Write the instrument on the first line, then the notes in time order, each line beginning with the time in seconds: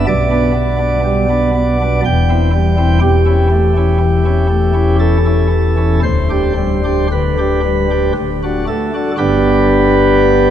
pipe organ
0.07 B1 B2 D5
0.31 B3 D4
0.54 B3
0.78 B3 D4
1.04 G3
1.29 B3 D4
1.55 B3
1.81 B3 D4
2.05 E1 E2 G5
2.30 C4 E4
2.54 G3
2.77 C4 E4
3.01 E1 E2 G4
3.26 C#4 E4
3.51 A3
3.77 C#4 E4
4.00 E3
4.25 C#4 E4
4.49 A3
4.74 C#4 E4
5.00 A4
5.25 C#4 E4
5.52 E3
5.77 C#4 E4
6.03 D1 D2 C5
6.30 D4 G4
6.57 G3
6.84 D4 G4
7.12 D3 B4
7.38 D4 G4
7.65 G3
7.90 D4 G4
8.16 D1 D2
8.43 D4 F#4
8.68 A3 A4
8.94 D4 F#4
9.18 G1 G2 B3 D4 G4 B4